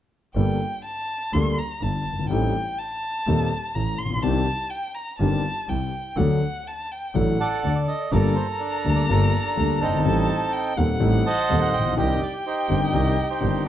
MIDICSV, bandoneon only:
0, 0, Header, 1, 2, 480
1, 0, Start_track
1, 0, Key_signature, -2, "minor"
1, 0, Tempo, 485437
1, 354, Time_signature, 4, 2, 24, 8
1, 8992, Tempo, 480384
1, 13575, End_track
2, 0, Start_track
2, 0, Title_t, "Bandoneon"
2, 0, Program_c, 0, 23
2, 7320, Note_on_c, 0, 69, 62
2, 7321, Note_on_c, 0, 78, 88
2, 7326, Note_on_c, 0, 74, 58
2, 7659, Note_off_c, 0, 74, 0
2, 7674, Note_on_c, 0, 74, 65
2, 7689, Note_off_c, 0, 78, 0
2, 7786, Note_off_c, 0, 74, 0
2, 7790, Note_on_c, 0, 75, 69
2, 8000, Note_off_c, 0, 69, 0
2, 8016, Note_off_c, 0, 75, 0
2, 8026, Note_on_c, 0, 74, 80
2, 8035, Note_on_c, 0, 70, 60
2, 8038, Note_on_c, 0, 69, 64
2, 8253, Note_off_c, 0, 74, 0
2, 8263, Note_on_c, 0, 72, 69
2, 8373, Note_off_c, 0, 72, 0
2, 8473, Note_off_c, 0, 70, 0
2, 8488, Note_on_c, 0, 70, 78
2, 8503, Note_on_c, 0, 62, 54
2, 8833, Note_off_c, 0, 70, 0
2, 8858, Note_on_c, 0, 74, 74
2, 8915, Note_off_c, 0, 74, 0
2, 8954, Note_off_c, 0, 69, 0
2, 8983, Note_on_c, 0, 74, 77
2, 8997, Note_on_c, 0, 70, 54
2, 8999, Note_on_c, 0, 69, 56
2, 9326, Note_off_c, 0, 70, 0
2, 9341, Note_off_c, 0, 62, 0
2, 9341, Note_on_c, 0, 70, 74
2, 9356, Note_on_c, 0, 62, 53
2, 9361, Note_off_c, 0, 74, 0
2, 9683, Note_off_c, 0, 70, 0
2, 9692, Note_off_c, 0, 69, 0
2, 9707, Note_on_c, 0, 69, 69
2, 9718, Note_on_c, 0, 60, 49
2, 9719, Note_on_c, 0, 63, 48
2, 9916, Note_off_c, 0, 62, 0
2, 10629, Note_off_c, 0, 69, 0
2, 10635, Note_off_c, 0, 60, 0
2, 10636, Note_off_c, 0, 63, 0
2, 11161, Note_on_c, 0, 81, 99
2, 11162, Note_on_c, 0, 72, 67
2, 11163, Note_on_c, 0, 75, 69
2, 11493, Note_off_c, 0, 81, 0
2, 11516, Note_on_c, 0, 78, 85
2, 11569, Note_off_c, 0, 78, 0
2, 11628, Note_on_c, 0, 79, 84
2, 11737, Note_off_c, 0, 79, 0
2, 11838, Note_off_c, 0, 72, 0
2, 11839, Note_off_c, 0, 75, 0
2, 11873, Note_on_c, 0, 67, 64
2, 11882, Note_on_c, 0, 75, 85
2, 12101, Note_off_c, 0, 75, 0
2, 12121, Note_on_c, 0, 74, 71
2, 12227, Note_off_c, 0, 74, 0
2, 12337, Note_off_c, 0, 67, 0
2, 12352, Note_on_c, 0, 67, 62
2, 12360, Note_on_c, 0, 63, 56
2, 12365, Note_on_c, 0, 72, 77
2, 12693, Note_off_c, 0, 72, 0
2, 12731, Note_on_c, 0, 75, 74
2, 12819, Note_off_c, 0, 67, 0
2, 12832, Note_off_c, 0, 75, 0
2, 12834, Note_on_c, 0, 67, 60
2, 12847, Note_on_c, 0, 75, 80
2, 13172, Note_off_c, 0, 63, 0
2, 13174, Note_off_c, 0, 67, 0
2, 13174, Note_off_c, 0, 75, 0
2, 13187, Note_on_c, 0, 63, 56
2, 13189, Note_on_c, 0, 67, 54
2, 13201, Note_on_c, 0, 72, 76
2, 13531, Note_off_c, 0, 72, 0
2, 13575, Note_off_c, 0, 63, 0
2, 13575, Note_off_c, 0, 67, 0
2, 13575, End_track
0, 0, End_of_file